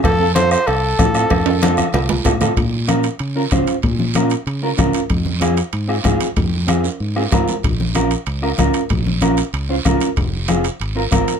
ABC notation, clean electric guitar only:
X:1
M:4/4
L:1/8
Q:1/4=190
K:Bbm
V:1 name="Clean electric guitar"
z [CF=A] [CFA] z3 [CFA] [CFA] | z [CF=A] [CFA] z3 [CFA] [CFA] | z2 [DFB] z2 [DFB] [DFc] z | z2 [DFB] z2 [DFB] [DFB] z |
z2 [CFA] z2 [CFA] [CFA] z | z2 [CFA] z2 [CFA] [CFB] z | z2 [DFB] z2 [DFB] [DFB] z | z2 [DFB] z2 [DFc] [DFB] z |
z2 [CFA] z2 [CFB] [CFB] z |]